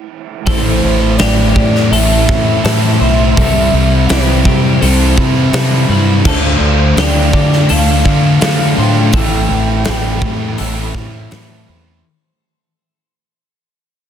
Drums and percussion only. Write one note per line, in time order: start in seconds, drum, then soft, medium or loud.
0.47 kick loud
0.47 open hi-hat medium
1.19 snare loud
1.19 open hi-hat medium
1.56 kick medium
1.75 snare soft
1.93 open hi-hat medium
2.29 kick medium
2.29 snare soft
2.65 snare loud
2.65 open hi-hat medium
3.37 kick loud
3.37 open hi-hat medium
4.09 snare loud
4.09 open hi-hat medium
4.45 kick medium
4.82 open hi-hat medium
5.18 kick medium
5.53 snare loud
5.53 open hi-hat medium
6.25 kick loud
6.25 crash loud
6.97 snare loud
6.97 open hi-hat medium
7.33 kick medium
7.53 snare soft
7.69 open hi-hat medium
8.05 kick medium
8.41 snare loud
8.41 open hi-hat medium
9.13 kick loud
9.13 open hi-hat medium
9.85 snare loud
9.85 open hi-hat medium
10.22 kick medium
10.58 open hi-hat medium
10.95 kick medium
10.95 snare soft
11.31 snare loud
11.31 open hi-hat medium